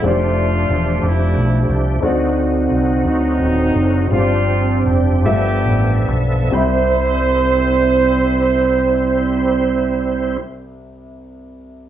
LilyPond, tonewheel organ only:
\new Staff \with { instrumentName = "Tonewheel organ" } { \time 6/8 \key c \major \tempo 4. = 50 <f a d' g'>2. | <d c' ees' fis'>2. | <f c' d' f' g'>4. <f b a' e''>4. | <g c' e' c''>2.~ |
<g c' e' c''>2. | }